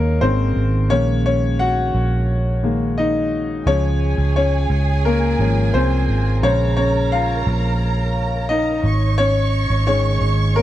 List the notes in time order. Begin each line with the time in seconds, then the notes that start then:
Already playing: D#2 D#3 G#3 A#3 C#4 A#4 C#5 D#5
0.21 G#1 D#3 G#3 C4 C#4 C5
0.56 G#1
0.89 A#1 D#3 G#3 A#3 C#4 C#5
1.26 C#4 C#5
1.59 F#4 F#5
1.94 A#1
2.63 D#3 G#3 A#3
2.98 D#4 D#5
3.66 C#2 F3 G#3 C#4 G#4 C#5 G#5
4.18 C#2
4.36 C#4 C#5
4.70 C#2
5.05 A#3 A#4
5.39 G#1 F3 G#3 C#4
5.74 C2 C4 C5
6.09 G#1
6.43 A#1 C#3 G#3 C#4 A#4 C5 C#5 A#5
6.77 C#4 C#5
7.12 F4 F5
7.47 A#1
8.49 D#4 D#5
8.83 G#1 C#5 C#6
9.18 C#4 C#5
9.70 G#1
9.87 D#3 G#3 C#4 C#5
10.21 G#1
10.56 A#3 A#4